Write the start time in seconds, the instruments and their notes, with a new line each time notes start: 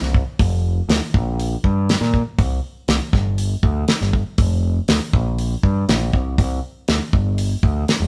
0.02 picked electric bass C2, snare
0.14 kick
0.39 picked electric bass F1, kick, open hi-hat
0.89 picked electric bass D2, snare, open hi-hat
1.14 picked electric bass A#1, kick
1.40 open hi-hat
1.64 picked electric bass G2, kick
1.89 snare, open hi-hat
2.01 picked electric bass A#2, snare
2.14 kick
2.39 picked electric bass C2, kick, open hi-hat
2.88 picked electric bass C2, snare, open hi-hat
3.13 picked electric bass G1, kick, snare
3.38 open hi-hat
3.63 picked electric bass D2, kick
3.88 snare, open hi-hat
4.01 picked electric bass G1, snare
4.13 kick
4.38 picked electric bass F1, kick, open hi-hat
4.88 picked electric bass D2, snare, open hi-hat
5.13 picked electric bass A#1, kick
5.39 open hi-hat
5.63 picked electric bass G2, kick
5.88 picked electric bass A#1, snare, open hi-hat
6.13 picked electric bass C2, kick
6.38 picked electric bass C2, kick, open hi-hat
6.88 picked electric bass D2, snare, open hi-hat
7.13 picked electric bass G1, kick
7.38 open hi-hat
7.63 picked electric bass D2, kick
7.88 snare, open hi-hat
8.00 picked electric bass E1